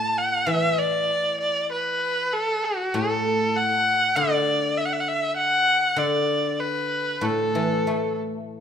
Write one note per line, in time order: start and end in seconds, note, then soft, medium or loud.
0.00 1.09 A2 soft
0.00 0.19 A5 medium
0.18 0.49 F#5 medium
0.46 2.33 E3 soft
0.46 0.79 E5 medium
0.78 1.40 D5 medium
1.41 1.70 D5 medium
1.72 2.34 B4 medium
2.33 2.66 A4 medium
2.64 2.96 F#4 medium
2.94 4.17 A2 soft
2.94 3.58 A4 medium
3.56 4.18 F#5 medium
4.16 5.95 D3 medium
4.16 4.79 D5 medium
4.78 4.87 E5 medium
4.86 4.94 F#5 medium
4.93 5.02 E5 medium
5.00 5.09 F#5 medium
5.08 5.36 E5 medium
5.37 6.00 F#5 medium
5.96 7.84 D3 medium
5.96 6.62 D5 medium
6.60 7.26 B4 medium
7.21 8.60 A2 soft
7.21 8.18 A4 medium
7.55 8.60 E3 soft
7.87 8.60 A3 soft